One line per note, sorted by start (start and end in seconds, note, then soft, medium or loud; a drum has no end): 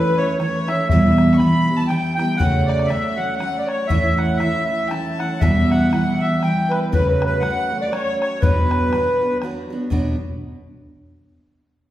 0.00 0.18 E3 medium
0.00 0.19 A3 medium
0.00 0.19 C#4 medium
0.00 0.18 E4 medium
0.00 0.19 B4 medium
0.00 0.20 B4 medium
0.17 0.39 A3 soft
0.17 0.40 C#4 soft
0.17 0.40 E4 soft
0.17 0.38 C#5 loud
0.17 0.40 C#5 medium
0.39 0.68 E3 medium
0.39 0.68 A3 medium
0.39 0.69 C#4 medium
0.39 0.67 E4 medium
0.39 0.69 C#5 medium
0.39 0.70 C#5 medium
0.39 bodhran medium
0.68 0.91 A3 soft
0.68 0.90 C#4 medium
0.68 0.89 E4 soft
0.68 0.88 E5 loud
0.68 0.89 E5 medium
0.68 bodhran medium
0.89 1.40 E2 loud
0.89 1.41 B2 loud
0.89 1.38 E3 loud
0.89 1.39 G3 loud
0.89 1.40 B3 medium
0.89 1.41 E4 loud
0.89 1.36 E5 loud
0.89 1.35 E5 medium
0.89 bodhran medium
1.18 bodhran medium
1.33 1.40 C#6 medium
1.38 1.68 E3 medium
1.38 1.68 G3 medium
1.38 1.68 B3 medium
1.38 1.79 B5 loud
1.38 1.78 B5 loud
1.38 bodhran medium
1.42 1.67 E4 medium
1.68 1.88 E3 soft
1.68 1.89 G3 medium
1.68 1.90 B3 medium
1.68 1.90 E4 medium
1.77 1.91 A5 medium
1.77 1.89 A5 medium
1.87 2.18 E3 medium
1.87 2.18 G3 medium
1.87 2.17 B3 medium
1.87 2.13 G5 loud
1.87 2.17 G5 medium
1.87 bodhran medium
1.92 2.17 E4 medium
2.15 2.40 B3 medium
2.15 2.40 E4 medium
2.15 2.39 G5 loud
2.15 2.38 G5 medium
2.19 2.40 E3 soft
2.19 2.39 G3 soft
2.19 bodhran medium
2.37 2.89 F#2 medium
2.37 2.90 C#3 loud
2.37 2.87 F#3 medium
2.37 2.89 A3 loud
2.37 2.90 C#4 loud
2.37 2.90 F#4 loud
2.37 2.68 F#5 loud
2.37 2.70 F#5 medium
2.37 bodhran medium
2.66 2.89 D5 loud
2.66 2.91 D5 medium
2.66 bodhran medium
2.79 bodhran medium
2.86 3.18 F#3 medium
2.86 3.18 A3 medium
2.86 3.18 E5 medium
2.86 3.20 E5 medium
2.90 3.16 C#4 medium
2.90 3.15 F#4 medium
2.90 bodhran medium
3.16 3.38 F#3 soft
3.16 3.38 A3 soft
3.16 3.39 C#4 soft
3.16 3.39 F#4 medium
3.16 3.35 F#5 loud
3.16 3.40 F#5 medium
3.36 3.90 F#3 medium
3.36 3.89 A3 medium
3.36 3.58 F#5 medium
3.40 3.89 C#4 medium
3.40 3.91 F#4 medium
3.40 3.67 F#5 medium
3.40 bodhran medium
3.58 3.67 D5 medium
3.66 3.87 C#5 medium
3.66 bodhran medium
3.70 3.94 C#5 medium
3.88 4.40 A2 medium
3.88 4.39 E3 loud
3.88 4.39 A3 loud
3.88 4.40 C#4 loud
3.88 4.42 E4 loud
3.88 4.19 E5 loud
3.88 bodhran medium
3.93 4.19 E5 medium
4.17 4.38 F#5 loud
4.17 4.39 F#5 medium
4.17 bodhran medium
4.37 4.90 E3 medium
4.37 4.89 A3 medium
4.37 4.64 E5 loud
4.37 bodhran medium
4.41 4.90 C#4 medium
4.41 4.92 E4 medium
4.41 4.68 E5 medium
4.66 4.89 E5 loud
4.72 4.89 E5 medium
4.87 5.19 E3 medium
4.87 5.19 A3 medium
4.87 5.20 C#4 medium
4.87 4.96 G5 medium
4.87 5.20 A5 medium
4.87 bodhran medium
4.93 5.19 E4 medium
4.93 5.44 A5 medium
5.19 5.42 A3 soft
5.19 5.42 C#4 soft
5.19 5.41 E4 soft
5.19 5.41 F#5 medium
5.19 bodhran medium
5.41 5.91 E2 loud
5.41 5.91 B2 loud
5.41 5.91 E3 loud
5.41 5.91 G3 loud
5.41 5.92 B3 loud
5.41 5.94 F#4 loud
5.41 5.70 E5 loud
5.41 5.93 E5 medium
5.41 bodhran medium
5.71 5.92 F#5 loud
5.71 bodhran medium
5.91 6.42 E3 medium
5.91 6.42 G3 medium
5.91 6.42 B3 medium
5.91 6.46 F#4 medium
5.91 6.19 F#5 loud
5.91 6.22 F#5 medium
5.91 bodhran medium
6.20 6.45 E5 medium
6.20 6.42 E5 loud
6.42 6.92 E3 medium
6.42 6.93 G3 medium
6.42 6.93 B3 medium
6.42 6.93 F#4 medium
6.42 6.71 G5 medium
6.42 6.73 G5 medium
6.42 bodhran medium
6.70 6.80 B4 loud
6.70 6.92 B4 medium
6.70 bodhran medium
6.92 7.42 F#2 medium
6.92 7.42 C#3 loud
6.92 7.40 F#3 loud
6.92 7.41 A3 loud
6.92 7.42 C#4 medium
6.92 7.43 F#4 loud
6.92 7.07 B4 medium
6.92 7.09 B4 medium
6.92 bodhran medium
7.09 7.23 B4 medium
7.22 7.42 B4 loud
7.22 bodhran medium
7.28 7.42 B4 medium
7.40 7.70 F#3 medium
7.40 7.71 A3 medium
7.40 7.70 C#4 medium
7.40 7.69 F#4 medium
7.40 7.77 F#5 loud
7.40 7.84 F#5 medium
7.40 bodhran medium
7.71 7.91 F#3 soft
7.71 7.91 A3 medium
7.71 7.92 C#4 soft
7.71 7.92 F#4 soft
7.81 7.92 D5 medium
7.92 8.43 F#3 medium
7.92 8.42 A3 medium
7.92 8.43 C#4 medium
7.92 8.44 F#4 medium
7.92 8.19 C#5 medium
7.92 bodhran medium
8.21 8.43 C#5 loud
8.21 8.44 C#5 medium
8.21 bodhran medium
8.41 8.92 B2 medium
8.41 8.93 F#3 medium
8.41 8.94 B3 loud
8.41 8.95 D4 loud
8.41 8.95 F#4 medium
8.41 9.38 B4 loud
8.41 9.42 B4 medium
8.41 bodhran loud
8.71 bodhran medium
8.93 9.22 F#3 medium
8.93 9.22 B3 medium
8.93 9.21 D4 medium
8.93 9.20 F#4 medium
8.93 bodhran medium
9.21 9.42 B3 soft
9.21 9.43 D4 soft
9.21 9.42 F#4 medium
9.42 9.71 F#3 medium
9.42 9.71 B3 medium
9.42 9.71 D4 medium
9.42 9.69 F#4 medium
9.42 bodhran medium
9.70 9.91 B3 medium
9.70 9.91 D4 medium
9.70 9.91 F#4 medium
9.90 10.14 B2 medium
9.90 10.15 F#3 medium
9.90 10.15 B3 loud
9.90 10.15 D4 loud
9.90 10.15 F#4 loud
9.90 bodhran medium